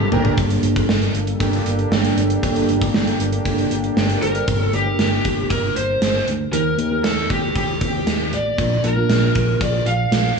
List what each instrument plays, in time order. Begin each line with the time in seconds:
Already playing: fm electric piano G2 A#3 D4 G4 A4, analog synth pad G3 A#3 D4 A4
0.12 fingered electric bass G1, fm electric piano A#3 D4 G4 A4, analog polysynth D4 G4 A#4, floor tom
0.25 floor tom
0.36 fingered electric bass G1, fm electric piano G2 A#3 D4 G4 A4, analog synth pad G3 A#3 D4 A4, kick, closed hi-hat
0.50 closed hi-hat
0.63 fingered electric bass G1, closed hi-hat
0.76 kick, closed hi-hat
0.89 fingered electric bass G1, snare
1.02 closed hi-hat
1.15 fingered electric bass G1, closed hi-hat
1.27 closed hi-hat
1.40 fingered electric bass G1, fm electric piano A#3 D4 G4 A4, analog polysynth A#3 D4 G4, kick, closed hi-hat
1.53 closed hi-hat
1.66 fingered electric bass G1, closed hi-hat
1.79 closed hi-hat
1.91 fingered electric bass G1, snare
2.04 closed hi-hat
2.17 fingered electric bass G1, closed hi-hat
2.30 closed hi-hat
2.42 fingered electric bass G1, fm electric piano G2 A#3 D4 G4 A4, kick, closed hi-hat
2.56 closed hi-hat
2.68 fingered electric bass G1, closed hi-hat
2.82 kick, closed hi-hat
2.94 fingered electric bass G1, snare
3.07 closed hi-hat
3.19 fingered electric bass G1, closed hi-hat
3.33 closed hi-hat
3.45 fingered electric bass G1, fm electric piano A#3 D4 G4 A4, kick, closed hi-hat
3.58 closed hi-hat
3.71 fingered electric bass G1, closed hi-hat
3.84 closed hi-hat
3.97 fingered electric bass G1, fm electric piano G4, snare
4.10 fm electric piano G4 A#4, closed hi-hat
4.22 fingered electric bass G1, fm electric piano A4 C5, lead electric guitar A#4, closed hi-hat
4.35 fm electric piano A#4 D5, closed hi-hat
4.48 fingered electric bass G1, fm electric piano G2 A#3 D4 G4 A#4, kick, closed hi-hat
4.62 lead electric guitar A4
4.73 fingered electric bass G1, fm electric piano A#3 D4 G4 A#4, lead electric guitar G4, closed hi-hat
4.86 fm electric piano A#3 D4 G4 A#4
4.99 fingered electric bass G1, snare, closed hi-hat
5.25 fingered electric bass G1, kick, closed hi-hat
5.50 fingered electric bass G1, lead electric guitar A#4, kick, closed hi-hat
5.76 fingered electric bass G1, lead electric guitar C5, closed hi-hat
6.02 fingered electric bass G1, snare, closed hi-hat
6.27 fingered electric bass D2, closed hi-hat
6.52 fingered electric bass D#2, fm electric piano D#3 A#3 D#4 G4 A#4, lead electric guitar A#4, closed hi-hat
6.78 fingered electric bass D#2, fm electric piano A#3 D#4 G4 A#4, closed hi-hat
6.91 fm electric piano A#3 D#4 G4 A#4
7.04 fingered electric bass D#2, lead electric guitar A4, snare, closed hi-hat
7.30 fingered electric bass D#2, lead electric guitar G4, kick, closed hi-hat
7.56 fingered electric bass D#2, lead electric guitar G4, kick, closed hi-hat
7.81 fingered electric bass D#2, kick, closed hi-hat
8.06 fingered electric bass D#2, snare, closed hi-hat
8.32 fingered electric bass A1, lead electric guitar D5, closed hi-hat
8.58 fingered electric bass A#1, fm electric piano A#2 A#3 D4 F4 A#4, kick, closed hi-hat
8.83 fingered electric bass A#1, fm electric piano A#3 D4 F4 A#4, lead electric guitar A#4, closed hi-hat
8.96 fm electric piano A#3 D4 F4 A#4
9.09 fingered electric bass A#1, snare, closed hi-hat
9.35 fingered electric bass A#1, kick, closed hi-hat
9.61 fingered electric bass A#1, lead electric guitar D5, kick, closed hi-hat
9.86 fingered electric bass A#1, lead electric guitar F5, closed hi-hat
10.11 fingered electric bass A#1, snare, closed hi-hat